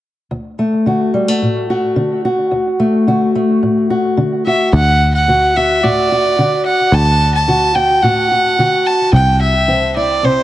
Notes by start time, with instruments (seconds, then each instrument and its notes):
0.31 steel-string acoustic guitar D2
0.59 steel-string acoustic guitar A3
0.86 steel-string acoustic guitar D3 F#4
1.14 steel-string acoustic guitar G3
1.28 steel-string acoustic guitar A3
1.42 steel-string acoustic guitar A2
1.70 steel-string acoustic guitar F#4
1.96 steel-string acoustic guitar D3
2.25 steel-string acoustic guitar F#4
2.51 steel-string acoustic guitar D2
2.80 steel-string acoustic guitar A3
3.07 steel-string acoustic guitar D3 F#4
3.35 steel-string acoustic guitar A3
3.63 steel-string acoustic guitar A2
3.90 steel-string acoustic guitar F#4
4.17 steel-string acoustic guitar D3
4.46 steel-string acoustic guitar F#4, fiddle E5
4.73 picked electric bass D2, steel-string acoustic guitar D2, fiddle F#5
5.14 fiddle F#5
5.28 steel-string acoustic guitar D3 F#4
5.56 steel-string acoustic guitar F#4, fiddle E5
5.83 steel-string acoustic guitar A2 F#4, fiddle D5
6.12 steel-string acoustic guitar F#4
6.38 steel-string acoustic guitar D3 F#4
6.66 fiddle F#5
6.92 picked electric bass D2, steel-string acoustic guitar D2, fiddle A5
7.35 fiddle A5
7.48 steel-string acoustic guitar D3 F#4
7.75 steel-string acoustic guitar F#4, fiddle G5
8.03 steel-string acoustic guitar A2 F#4, fiddle F#5
8.31 steel-string acoustic guitar F#4
8.59 steel-string acoustic guitar D3 F#4
8.86 fiddle A5
9.12 picked electric bass C2, steel-string acoustic guitar C3, fiddle G5
9.42 fiddle E5
9.68 steel-string acoustic guitar E3 C4
9.97 steel-string acoustic guitar E4, fiddle D5
10.23 steel-string acoustic guitar C3 C4, fiddle C5